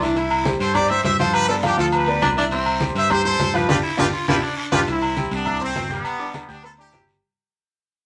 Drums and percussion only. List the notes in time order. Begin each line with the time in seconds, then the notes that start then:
0.01 short guiro, maracas
0.16 high conga, low agogo, long guiro, maracas
0.31 high conga, low agogo, maracas
0.45 high conga, low timbale, short guiro, maracas
0.60 high conga, low agogo, short guiro, maracas
0.75 high conga, low conga, low agogo, long guiro, maracas
0.90 high conga, maracas
1.04 high conga, low timbale, low agogo, short guiro, maracas
1.19 high conga, short guiro, maracas
1.34 high conga, low agogo, long guiro, maracas
1.49 high conga, maracas
1.63 high conga, low timbale, low agogo, short guiro, maracas
1.78 high conga, short guiro, maracas
1.92 high conga, low agogo, long guiro, maracas
2.07 high conga, low agogo, maracas
2.22 high conga, low timbale, low agogo, short guiro, maracas
2.37 short guiro, maracas
2.51 high conga, low agogo, long guiro, maracas
2.66 high conga, low agogo, maracas
2.80 high conga, low timbale, short guiro, maracas
2.95 high conga, low agogo, short guiro, maracas
3.10 high conga, low conga, low agogo, long guiro, maracas
3.25 high conga, low conga
3.39 high conga, low timbale, low agogo, short guiro, maracas
3.54 high conga, short guiro, maracas
3.69 high conga, high timbale, long guiro, maracas
3.98 high conga, high timbale, long guiro, maracas
4.28 high conga, high timbale, long guiro, maracas
4.72 high conga, high timbale, maracas
4.87 high conga, low agogo, long guiro, maracas
5.02 high conga, low agogo, maracas
5.16 high conga, low timbale, short guiro, maracas
5.31 high conga, low agogo, short guiro, maracas
5.45 high conga, low conga, low agogo, long guiro, maracas
5.60 high conga, low conga, maracas
5.75 high conga, low timbale, low agogo, short guiro, maracas
5.90 high conga, short guiro, maracas
6.05 high conga, low agogo, long guiro, maracas
6.19 high conga, maracas
6.34 high conga, low timbale, low agogo, short guiro, maracas
6.49 short guiro, maracas
6.63 high conga, low agogo, maracas
6.78 high conga, low agogo, maracas
6.92 high conga, low timbale, low agogo, short guiro, maracas
7.08 short guiro, maracas